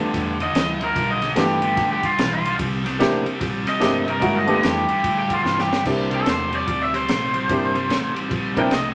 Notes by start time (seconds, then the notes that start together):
Already playing: A3 B3 D4 F4 G4
0.00 G2 D3
0.13 E2 G2 D3, kick, snare, ride
0.40 G2 D3 D#5, ride
0.53 D2 G2 E3, snare, ride
0.80 G2 D3 A#4, ride
0.95 B1 G2 D3, kick, ride
1.11 D#5
1.21 G2 D3, snare, ride
1.35 G1 G2 E3 A3 B3 D4 F4 G4, snare, ride
1.39 G4
1.61 G2 D3, ride
1.76 A1 G2 D3, kick, snare, ride
1.91 G4
2.02 G2 D3 F4, kick, ride
2.18 B1 G2 E3, snare, ride
2.33 F4
2.44 G2 D3, ride
2.59 C2 C3 G3, kick, ride
2.84 C3 G3, snare, ride
2.99 A1 C3 A3 A#3 C4 D4 E4 G4, snare, ride
3.25 C3 G3, muted fingered electric bass stroke, ride
3.40 A#1 C3 G3, kick, snare, ride
3.66 C3 G3 D#5, muted fingered electric bass stroke, snare, ride
3.80 G1 C3 A3 A#3 C4 D4 E4 G4, snare, ride
4.07 C3 G3 A#4, ride
4.20 G2 D3 G#3 A#3 C#4 E4 F#4, kick, ride
4.37 D#5
4.46 G2 D3 A3 B3 D4 F4 G4, ride
4.62 F2 G2 E3 G4, snare, ride
4.88 G2 D3, ride
5.02 G2 A2 D3, kick, ride
5.19 G4
5.29 G2 D3, kick, ride
5.33 F4
5.43 G2 E3, snare
5.59 G4, snare
5.69 G2 D3, snare
5.85 C2 C3 G3 A#3 C4 D4 E4 G4, kick, crash
6.10 C3 G3, ride
6.15 A4
6.26 E2 C3 A3 C5, snare, ride
6.52 C3 G3, ride
6.56 D5
6.67 D2 C3 G3, kick, ride
6.83 E5
6.93 C3 G3 C5, snare, ride
7.08 A#1 C3 A3, snare, ride
7.33 C3 G3, ride
7.49 G1 C3 G3 A#3 C4 D4 E4 G4, kick, ride
7.74 C3 G3, ride
7.89 A1 C3 A3, snare, ride
8.14 C3 G3, ride
8.29 A#1 C3 G3, kick, ride
8.55 C3 G3 A#3 C4 D4 E4 A#4, kick, ride
8.60 G5
8.70 C2 C3 A3 D#5, snare, ride